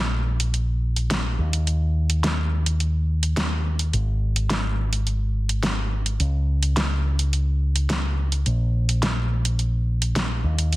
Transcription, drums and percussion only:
0.40 closed hi-hat medium
0.54 closed hi-hat soft
0.96 closed hi-hat medium
1.10 snare loud
1.10 closed hi-hat soft
1.53 closed hi-hat medium
1.67 closed hi-hat soft
2.10 closed hi-hat medium
2.24 snare loud
2.24 closed hi-hat soft
2.66 closed hi-hat medium
2.80 closed hi-hat soft
3.23 closed hi-hat medium
3.37 snare loud
3.37 closed hi-hat soft
3.79 closed hi-hat medium
3.93 closed hi-hat soft
4.36 closed hi-hat medium
4.50 snare loud
4.50 closed hi-hat soft
4.93 closed hi-hat medium
5.07 closed hi-hat soft
5.49 closed hi-hat medium
5.63 snare loud
5.63 closed hi-hat soft
6.06 closed hi-hat medium
6.20 closed hi-hat soft
6.63 closed hi-hat medium
6.77 snare loud
6.77 closed hi-hat soft
7.19 closed hi-hat medium
7.33 closed hi-hat soft
7.76 closed hi-hat medium
7.90 snare loud
7.90 closed hi-hat soft
8.32 closed hi-hat medium
8.46 closed hi-hat soft
8.89 closed hi-hat medium
9.02 snare loud
9.02 closed hi-hat soft
9.45 closed hi-hat medium
9.59 closed hi-hat soft
10.02 closed hi-hat medium
10.16 snare loud
10.16 closed hi-hat soft
10.59 closed hi-hat medium
10.73 closed hi-hat soft

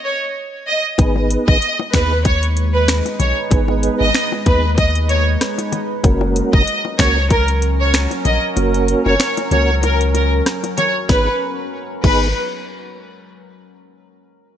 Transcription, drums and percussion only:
0.98 kick loud
0.98 closed hi-hat medium
0.98 high bongo medium
1.16 high bongo medium
1.30 closed hi-hat medium
1.48 kick loud
1.62 closed hi-hat medium
1.79 high bongo medium
1.94 finger snap loud
1.94 kick loud
1.94 snare loud
1.94 closed hi-hat medium
1.94 low bongo medium
2.25 kick loud
2.25 closed hi-hat medium
2.25 high bongo medium
2.43 closed hi-hat medium
2.57 closed hi-hat medium
2.88 finger snap loud
2.88 cross-stick loud
2.88 snare loud
2.88 closed hi-hat medium
3.05 closed hi-hat medium
3.05 high bongo medium
3.19 closed hi-hat medium
3.19 low bongo medium
3.51 kick loud
3.51 closed hi-hat medium
3.51 high bongo medium
3.68 high bongo medium
3.83 closed hi-hat medium
4.14 finger snap loud
4.14 snare loud
4.14 closed hi-hat medium
4.32 high bongo medium
4.46 kick loud
4.46 closed hi-hat medium
4.46 low bongo medium
4.78 kick loud
4.78 closed hi-hat medium
4.78 high bongo medium
4.95 closed hi-hat medium
5.09 closed hi-hat medium
5.41 cross-stick loud
5.41 snare medium
5.41 closed hi-hat medium
5.58 closed hi-hat medium
5.58 high bongo medium
5.72 closed hi-hat medium
5.72 low bongo medium
6.03 kick loud
6.03 closed hi-hat medium
6.03 high bongo medium
6.21 high bongo medium
6.36 closed hi-hat medium
6.53 kick loud
6.67 closed hi-hat medium
6.85 high bongo medium
6.99 finger snap medium
6.99 kick medium
6.99 snare loud
6.99 closed hi-hat medium
6.99 low bongo medium
7.30 kick loud
7.30 closed hi-hat medium
7.30 high bongo medium
7.48 closed hi-hat medium
7.62 closed hi-hat medium
7.94 finger snap loud
7.94 cross-stick loud
7.94 snare loud
7.94 closed hi-hat medium
8.11 closed hi-hat medium
8.11 high bongo medium
8.25 closed hi-hat medium
8.25 low bongo medium
8.56 closed hi-hat medium
8.56 high bongo medium
8.74 closed hi-hat medium
8.88 closed hi-hat medium
9.06 high bongo medium
9.20 finger snap loud
9.20 snare loud
9.20 closed hi-hat medium
9.37 closed hi-hat medium
9.37 high bongo medium
9.51 closed hi-hat medium
9.51 low bongo medium
9.83 closed hi-hat medium
9.83 high bongo medium
10.01 closed hi-hat medium
10.14 closed hi-hat medium
10.14 high bongo medium
10.46 cross-stick loud
10.46 snare medium
10.46 closed hi-hat medium
10.63 closed hi-hat medium
10.63 high bongo medium
10.78 closed hi-hat medium
10.78 low bongo medium
11.09 kick loud
11.09 snare medium
11.09 high bongo medium
12.04 kick loud
12.04 crash medium
12.04 high bongo medium

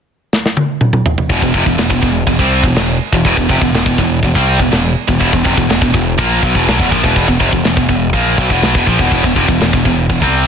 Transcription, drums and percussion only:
0.33 snare medium
0.46 snare medium
0.57 high tom medium
0.81 mid tom medium
0.93 mid tom medium
1.06 floor tom loud
1.18 floor tom loud
1.30 kick loud
1.30 china medium
1.42 kick medium
1.54 kick medium
1.66 kick medium
1.78 snare loud
1.78 china medium
1.90 kick medium
2.03 kick medium
2.27 kick medium
2.27 china medium
2.39 kick medium
2.63 kick loud
2.76 snare loud
2.76 china medium
3.12 kick medium
3.25 kick medium
3.25 china medium
3.37 kick medium
3.49 kick medium
3.61 kick medium
3.74 snare loud
3.74 china medium
3.86 kick medium
3.98 kick medium
4.23 kick loud
4.23 china medium
4.35 kick medium
4.59 kick loud
4.72 snare loud
4.72 china medium
5.08 kick medium
5.21 kick medium
5.21 china medium
5.33 kick medium
5.45 kick medium
5.58 kick medium
5.70 snare loud
5.70 china medium
5.82 kick medium
5.94 kick medium
6.18 kick loud
6.18 china medium
6.43 kick loud
6.55 kick medium
6.68 snare loud
6.68 china medium
6.80 kick loud
6.92 kick medium
7.04 kick medium
7.16 kick medium
7.16 china medium
7.28 kick medium
7.40 kick medium
7.53 kick medium
7.64 snare loud
7.64 china medium
7.77 kick medium
7.89 kick medium
8.13 kick loud
8.13 china medium
8.38 kick loud
8.50 kick medium
8.62 snare loud
8.62 china medium
8.75 kick loud
8.87 kick medium
8.99 kick medium
9.11 kick medium
9.11 crash medium
9.11 china medium
9.24 kick medium
9.36 kick medium
9.48 kick medium
9.61 snare loud
9.61 china medium
9.73 kick medium
9.85 kick medium
10.10 kick loud
10.10 china medium
10.22 kick medium

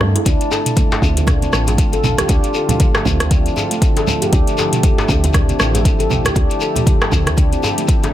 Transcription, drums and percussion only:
0.01 cross-stick medium
0.01 low conga loud
0.16 closed hi-hat soft
0.16 djembe tone medium
0.26 kick loud
0.26 closed hi-hat medium
0.26 muted conga medium
0.26 shekere medium
0.41 closed hi-hat soft
0.41 shekere soft
0.51 djembe slap medium
0.51 shekere medium
0.66 closed hi-hat soft
0.66 mid tom medium
0.66 shekere soft
0.77 kick loud
0.77 closed hi-hat medium
0.77 muted conga soft
0.77 high conga medium
0.77 shekere medium
0.92 djembe slap loud
0.92 shekere soft
1.02 kick medium
1.02 djembe tone medium
1.02 shekere medium
1.17 closed hi-hat soft
1.17 muted conga medium
1.17 high conga medium
1.17 shekere soft
1.27 kick loud
1.27 cross-stick medium
1.27 closed hi-hat medium
1.27 mid tom medium
1.27 djembe tone medium
1.27 low conga loud
1.27 shekere soft
1.42 closed hi-hat soft
1.42 high conga medium
1.42 shekere soft
1.52 cross-stick medium
1.52 muted conga soft
1.52 shekere medium
1.67 closed hi-hat soft
1.67 djembe tone medium
1.67 shekere soft
1.78 kick loud
1.78 closed hi-hat medium
1.78 shekere soft
1.93 closed hi-hat soft
1.93 muted conga medium
1.93 shekere soft
2.04 mid tom medium
2.04 high conga medium
2.04 low conga medium
2.04 shekere medium
2.18 cross-stick medium
2.18 closed hi-hat soft
2.18 low conga medium
2.18 shekere soft
2.29 kick loud
2.29 closed hi-hat medium
2.29 muted conga medium
2.29 shekere medium
2.44 closed hi-hat soft
2.44 shekere soft
2.54 shekere medium
2.69 closed hi-hat soft
2.69 mid tom medium
2.69 low conga loud
2.69 shekere soft
2.80 kick loud
2.80 closed hi-hat medium
2.80 muted conga soft
2.80 high conga medium
2.80 shekere medium
2.95 cross-stick loud
2.95 djembe slap loud
2.95 shekere soft
3.06 kick medium
3.06 low conga loud
3.06 shekere loud
3.20 cross-stick medium
3.20 closed hi-hat soft
3.20 muted conga medium
3.20 high conga loud
3.20 shekere soft
3.31 kick loud
3.31 closed hi-hat medium
3.31 high conga medium
3.31 shekere soft
3.46 closed hi-hat soft
3.46 shekere soft
3.56 muted conga soft
3.56 djembe tone medium
3.56 shekere loud
3.71 closed hi-hat soft
3.71 shekere soft
3.82 kick loud
3.82 closed hi-hat medium
3.82 shekere soft
3.97 closed hi-hat soft
3.97 djembe slap medium
3.97 muted conga soft
3.97 djembe tone medium
3.97 shekere soft
4.08 low conga loud
4.08 shekere loud
4.22 closed hi-hat soft
4.22 djembe tone medium
4.22 shekere soft
4.33 kick loud
4.33 closed hi-hat medium
4.33 muted conga soft
4.33 shekere medium
4.47 closed hi-hat soft
4.47 shekere soft
4.58 djembe slap medium
4.58 shekere loud
4.73 closed hi-hat soft
4.73 mid tom medium
4.73 shekere soft
4.83 kick loud
4.83 closed hi-hat medium
4.83 muted conga soft
4.83 high conga medium
4.83 shekere medium
4.98 djembe slap loud
4.98 shekere soft
5.09 kick medium
5.09 djembe tone medium
5.09 shekere loud
5.24 closed hi-hat soft
5.24 muted conga soft
5.24 high conga loud
5.24 shekere soft
5.34 kick loud
5.34 cross-stick medium
5.34 closed hi-hat medium
5.34 mid tom medium
5.34 djembe tone medium
5.34 low conga medium
5.34 shekere medium
5.49 closed hi-hat soft
5.49 high conga medium
5.49 shekere soft
5.59 cross-stick loud
5.59 muted conga soft
5.59 shekere medium
5.74 closed hi-hat soft
5.74 djembe tone medium
5.74 shekere soft
5.85 kick loud
5.85 closed hi-hat medium
5.85 shekere medium
6.00 closed hi-hat soft
6.00 muted conga soft
6.00 shekere soft
6.10 mid tom medium
6.10 high conga medium
6.10 low conga medium
6.10 shekere medium
6.25 cross-stick loud
6.25 closed hi-hat soft
6.25 low conga medium
6.25 shekere soft
6.35 kick loud
6.35 closed hi-hat medium
6.35 muted conga medium
6.35 shekere soft
6.50 closed hi-hat soft
6.50 shekere soft
6.61 shekere loud
6.76 closed hi-hat soft
6.76 mid tom medium
6.76 low conga medium
6.76 shekere soft
6.87 kick loud
6.87 closed hi-hat medium
6.87 muted conga soft
6.87 high conga loud
6.87 shekere medium
7.01 cross-stick loud
7.01 djembe slap loud
7.01 shekere soft
7.12 kick medium
7.12 low conga loud
7.12 shekere loud
7.27 cross-stick medium
7.27 closed hi-hat soft
7.27 muted conga soft
7.27 high conga loud
7.27 shekere soft
7.37 kick loud
7.37 closed hi-hat medium
7.37 high conga medium
7.37 shekere medium
7.53 closed hi-hat soft
7.53 shekere soft
7.62 muted conga soft
7.62 djembe tone medium
7.62 shekere loud
7.78 closed hi-hat soft
7.78 shekere soft
7.88 kick loud
7.88 closed hi-hat medium
7.88 shekere medium
8.03 closed hi-hat soft
8.03 djembe slap medium
8.03 muted conga medium
8.03 djembe tone medium
8.03 shekere soft

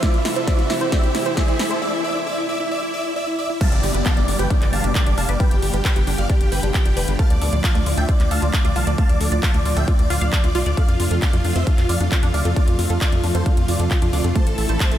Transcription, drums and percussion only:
0.03 kick loud
0.03 snare medium
0.03 closed hi-hat loud
0.14 closed hi-hat soft
0.25 snare medium
0.25 open hi-hat loud
0.36 closed hi-hat soft
0.47 kick loud
0.47 snare medium
0.47 closed hi-hat medium
0.59 closed hi-hat soft
0.70 snare medium
0.70 open hi-hat medium
0.81 closed hi-hat soft
0.92 kick loud
0.92 snare medium
0.92 closed hi-hat loud
1.04 closed hi-hat soft
1.15 snare medium
1.15 open hi-hat loud
1.26 closed hi-hat soft
1.37 kick loud
1.37 snare medium
1.37 closed hi-hat medium
1.48 closed hi-hat soft
1.59 snare medium
1.59 open hi-hat medium
1.71 closed hi-hat soft
3.61 kick loud
3.61 closed hi-hat medium
3.61 crash loud
3.72 closed hi-hat medium
3.83 open hi-hat loud
3.94 closed hi-hat medium
4.06 kick loud
4.06 clap loud
4.06 closed hi-hat medium
4.17 closed hi-hat medium
4.28 open hi-hat medium
4.39 closed hi-hat medium
4.50 kick loud
4.50 closed hi-hat medium
4.62 clap soft
4.62 closed hi-hat medium
4.73 open hi-hat loud
4.84 closed hi-hat medium
4.95 kick loud
4.95 clap loud
4.95 closed hi-hat medium
5.06 closed hi-hat medium
5.18 open hi-hat medium
5.29 closed hi-hat medium
5.40 kick loud
5.40 closed hi-hat medium
5.51 closed hi-hat medium
5.62 open hi-hat loud
5.74 closed hi-hat medium
5.85 kick loud
5.85 clap loud
5.85 closed hi-hat medium
5.96 closed hi-hat medium
6.07 open hi-hat loud
6.18 closed hi-hat medium
6.30 kick loud
6.30 closed hi-hat medium
6.41 closed hi-hat medium
6.52 open hi-hat loud
6.63 closed hi-hat medium
6.74 kick loud
6.74 clap loud
6.74 closed hi-hat medium
6.86 closed hi-hat medium
6.97 open hi-hat loud
7.08 closed hi-hat medium
7.19 kick loud
7.19 closed hi-hat medium
7.30 closed hi-hat medium
7.42 open hi-hat loud
7.53 closed hi-hat medium
7.64 kick loud
7.64 clap loud
7.64 closed hi-hat medium
7.75 closed hi-hat medium
7.86 open hi-hat medium
7.97 closed hi-hat medium
8.09 kick loud
8.09 closed hi-hat medium
8.20 clap soft
8.20 closed hi-hat medium
8.31 open hi-hat loud
8.42 closed hi-hat medium
8.53 kick loud
8.53 clap loud
8.53 closed hi-hat medium
8.65 closed hi-hat medium
8.76 open hi-hat loud
8.87 closed hi-hat medium
8.98 kick loud
8.98 closed hi-hat medium
9.09 closed hi-hat medium
9.21 open hi-hat loud
9.32 closed hi-hat medium
9.43 kick loud
9.43 clap loud
9.43 closed hi-hat medium
9.54 closed hi-hat medium
9.65 open hi-hat loud
9.77 closed hi-hat medium
9.88 kick loud
9.88 closed hi-hat medium
9.99 closed hi-hat medium
10.10 open hi-hat loud
10.21 closed hi-hat medium
10.33 kick loud
10.33 clap loud
10.33 closed hi-hat medium
10.44 closed hi-hat medium
10.55 open hi-hat medium
10.66 closed hi-hat medium
10.77 kick loud
10.77 closed hi-hat medium
10.89 closed hi-hat medium
11.00 open hi-hat loud
11.11 closed hi-hat medium
11.22 kick loud
11.22 clap loud
11.22 closed hi-hat medium
11.33 closed hi-hat medium
11.44 open hi-hat medium
11.56 closed hi-hat medium
11.67 kick loud
11.67 closed hi-hat medium
11.78 clap soft
11.78 closed hi-hat medium
11.89 open hi-hat loud
12.00 closed hi-hat medium
12.12 kick loud
12.12 clap loud
12.12 closed hi-hat medium
12.23 closed hi-hat medium
12.34 open hi-hat medium
12.45 closed hi-hat medium
12.56 kick loud
12.56 closed hi-hat medium
12.68 closed hi-hat medium
12.79 open hi-hat loud
12.90 closed hi-hat medium
13.01 kick loud
13.01 clap loud
13.01 closed hi-hat medium
13.12 closed hi-hat medium
13.24 open hi-hat medium
13.35 closed hi-hat medium
13.46 kick loud
13.46 closed hi-hat medium
13.57 closed hi-hat medium
13.68 open hi-hat loud
13.80 closed hi-hat medium
13.91 kick loud
13.91 clap loud
13.91 closed hi-hat medium
14.02 closed hi-hat medium
14.13 open hi-hat medium
14.24 closed hi-hat medium
14.36 kick loud
14.36 closed hi-hat medium
14.47 closed hi-hat medium
14.58 open hi-hat loud
14.69 closed hi-hat medium
14.80 kick loud
14.80 clap loud
14.80 closed hi-hat medium
14.92 closed hi-hat medium

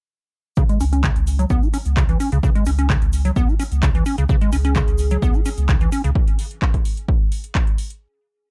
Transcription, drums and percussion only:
0.56 kick loud
0.56 shaker soft
0.69 closed hi-hat soft
0.69 shaker soft
0.80 open hi-hat loud
0.80 shaker medium
0.93 closed hi-hat medium
0.93 shaker soft
1.03 kick loud
1.03 clap loud
1.03 shaker soft
1.16 closed hi-hat medium
1.16 shaker soft
1.27 open hi-hat loud
1.27 shaker medium
1.39 closed hi-hat medium
1.39 shaker soft
1.50 kick loud
1.50 shaker medium
1.63 shaker soft
1.74 open hi-hat loud
1.74 shaker medium
1.85 closed hi-hat medium
1.85 shaker soft
1.97 kick loud
1.97 clap loud
1.97 shaker medium
2.09 closed hi-hat soft
2.09 shaker soft
2.20 open hi-hat loud
2.20 shaker medium
2.32 closed hi-hat medium
2.32 shaker soft
2.43 kick loud
2.43 shaker soft
2.55 closed hi-hat soft
2.55 shaker soft
2.66 open hi-hat loud
2.66 shaker medium
2.78 closed hi-hat medium
2.78 shaker soft
2.90 kick loud
2.90 clap loud
2.90 shaker soft
3.02 closed hi-hat soft
3.02 shaker soft
3.13 open hi-hat loud
3.13 shaker medium
3.25 closed hi-hat medium
3.25 shaker soft
3.36 kick loud
3.36 shaker medium
3.49 shaker soft
3.59 open hi-hat loud
3.59 shaker medium
3.72 closed hi-hat medium
3.72 shaker soft
3.83 kick loud
3.83 clap loud
3.83 shaker medium
3.95 closed hi-hat soft
3.95 shaker soft
4.06 open hi-hat loud
4.06 shaker medium
4.18 closed hi-hat medium
4.18 shaker soft
4.29 kick loud
4.29 shaker medium
4.41 closed hi-hat soft
4.41 shaker soft
4.52 open hi-hat loud
4.52 shaker medium
4.64 closed hi-hat medium
4.64 shaker soft
4.75 kick loud
4.75 clap loud
4.75 shaker medium
4.88 closed hi-hat soft
4.88 shaker soft
4.98 open hi-hat loud
4.98 shaker medium
5.10 closed hi-hat medium
5.10 shaker soft
5.22 kick loud
5.22 shaker medium
5.34 shaker soft
5.45 open hi-hat loud
5.45 shaker medium
5.57 closed hi-hat medium
5.57 shaker soft
5.68 kick loud
5.68 clap loud
5.68 shaker medium
5.80 closed hi-hat soft
5.80 shaker soft
5.92 open hi-hat loud
5.92 shaker loud
6.04 closed hi-hat medium
6.04 shaker soft
6.15 kick loud
6.28 closed hi-hat soft
6.39 open hi-hat loud
6.51 closed hi-hat medium
6.62 kick loud
6.62 clap loud
6.74 kick medium
6.74 closed hi-hat soft
6.85 open hi-hat loud
6.97 closed hi-hat medium
7.08 kick loud
7.32 open hi-hat loud
7.44 closed hi-hat medium
7.55 kick loud
7.55 clap loud
7.67 closed hi-hat soft
7.78 open hi-hat loud
7.90 closed hi-hat medium

